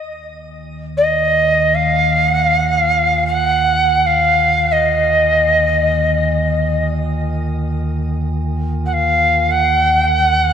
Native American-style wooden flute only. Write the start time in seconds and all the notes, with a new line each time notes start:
0.97 D#5
1.74 F5
2.30 F#5
2.42 F5
3.27 F#5
4.06 F5
4.71 D#5
8.85 F#5
8.93 F5
9.51 F#5